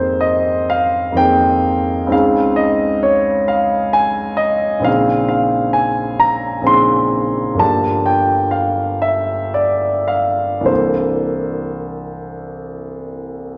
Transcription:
Already playing: F2 D#3 A#3 C4 G#4 C5
0.21 D#5
0.70 F5
1.12 F2 D#3 A#3 C4
1.16 G#4 G5
2.07 C#2 C#3 C4 D#4
2.11 G#4 F5
2.56 D#5
3.03 C#5
3.48 F5
3.93 G#5
4.37 D#5
4.80 A#1 C#3 C4 D#4
4.84 G#4 F5
5.29 F5
5.73 G#5
6.19 A#5
6.61 A#1 C#3 C4 D#4
6.67 G#4 C6
7.54 G1 F3 A#3 D4
7.59 G4 A5
8.06 G5
8.51 F5
9.02 E5
9.54 D5
10.08 F5
10.61 C2 E3 A#3
10.65 D4 A4 C5

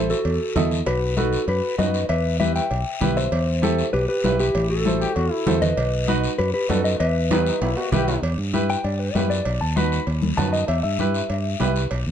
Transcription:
Already playing: A1 E4 A4 C5
0.10 F#4 A4, short guiro
0.25 E2, cowbell, high conga, long guiro
0.56 E2 E4 A4 D#5, high conga, low conga, low timbale, short guiro
0.71 short guiro
0.86 B1 F#4 B4, cowbell, high conga, long guiro
1.17 D#4 F#4 A4 B4, high conga, short guiro
1.33 short guiro
1.48 F#2 F#4 B4, cowbell, high conga, long guiro
1.78 F#2 D#4 F#4 B4 D#5, high conga, low timbale, short guiro
1.94 short guiro
2.09 E2 B4 E5, cowbell, high conga, long guiro
2.39 E4 G4 B4 E5, high conga, short guiro
2.56 E5 G5, short guiro
2.71 B1, cowbell, high conga, long guiro
3.01 B1 E4 G4 B4, high conga, low conga, short guiro
3.17 C5 E5, short guiro
3.32 E2, cowbell, high conga, long guiro
3.62 E4 G4 A4, high conga, short guiro
3.79 short guiro
3.93 B1 G4 B4, cowbell, high conga, long guiro
4.09 G4 B4
4.24 B1 E4 G4 B4, high conga, low timbale, short guiro
4.40 E4 G4, short guiro
4.55 A1, cowbell, high conga, long guiro
4.70 F#4 A4
4.85 E4 A4 C5, high conga, short guiro
5.01 G4, short guiro
5.16 E2 F#4, cowbell, high conga, long guiro
5.32 E4
5.46 E2 E4 A4 C5, high conga, low conga, low timbale, short guiro
5.62 B4 D#5, low conga, short guiro
5.77 B1, cowbell, high conga, long guiro
6.08 D#4 F#4 B4, high conga, short guiro
6.24 short guiro
6.38 F#2 F#4 B4, cowbell, high conga, long guiro
6.54 G4 B4
6.69 F#2 D#4 F#4 A4 B4 D5, high conga, low timbale, short guiro
6.84 B4 D#5, short guiro
7.00 E2 B4 E5, cowbell, high conga, long guiro
7.30 D#4 E4 G4 B4, high conga, high timbale, short guiro
7.47 D#4, short guiro
7.61 B1 E4, cowbell, high conga, low timbale, long guiro
7.77 F#4, low timbale
7.92 B1 E4 G4 B4, high conga, low conga, low timbale, short guiro
8.08 low timbale, short guiro
8.22 E2, cowbell, long guiro
8.38 G2
8.53 E4 G4 B4, high conga, short guiro
8.69 G5, short guiro
8.84 G2 D5, cowbell, long guiro
8.99 B4
9.15 F#2 E4 G4 B4 E5, high conga, low timbale, short guiro
9.30 D5, short guiro
9.45 B1, cowbell, long guiro
9.61 D#2 A5
9.76 D#4 F#4 B4 B5, high conga, short guiro
9.92 short guiro
10.07 D#2, cowbell, long guiro
10.22 high conga
10.37 F#2 D#4 F#4 B4 A5, high conga, low conga, low timbale, short guiro
10.53 D#5, short guiro
10.68 E2 E5, cowbell, long guiro
10.83 G2 E5
10.99 E4 G4 B4, high conga, short guiro
11.14 short guiro
11.30 G2, cowbell, long guiro
11.60 C2 E4 G4 B4, high conga, low timbale, short guiro
11.76 short guiro
11.91 B1, cowbell, long guiro
12.07 D#2

